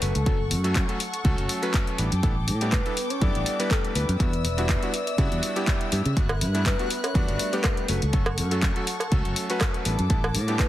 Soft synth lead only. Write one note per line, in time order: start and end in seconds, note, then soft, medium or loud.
0.02 0.72 A4 medium
2.72 3.12 B4 loud
3.10 3.23 C#5 loud
3.21 3.72 D5 loud
3.70 3.96 A4 loud
3.94 5.42 B4 loud
6.66 7.06 B4 loud
7.04 7.17 C#5 loud
7.16 7.55 D5 loud
7.53 7.90 B4 loud
7.89 8.63 A4 medium
10.59 10.69 B4 loud